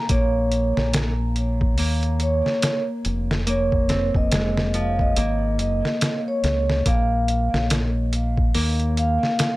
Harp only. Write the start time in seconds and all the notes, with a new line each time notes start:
Already playing: C4
0.10 A#3
1.78 A#3
3.47 A#3
3.89 C4
4.32 G#3
4.74 F3
5.17 A#3
6.86 A#3
8.55 A#3